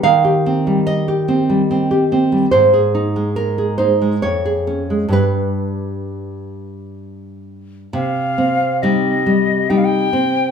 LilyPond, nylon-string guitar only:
\new Staff \with { instrumentName = "Nylon-string guitar" } { \time 3/4 \key c \minor \tempo 4 = 69 << { f''4 ees''2 | c''4 bes'8 c''8 des''4 | b'2~ b'8 r8 | r2. | } \\ { ees16 g'16 c'16 g8 g'16 c'16 g16 c'16 g'16 c'16 g16 | aes,16 aes'16 ees'16 aes8 aes'16 ees'16 aes16 f,16 aes'16 des'16 aes16 | <g, g d'>2. | c8 c'8 <g ees'>8 g8 <g ees'>8 c'8 | } >> }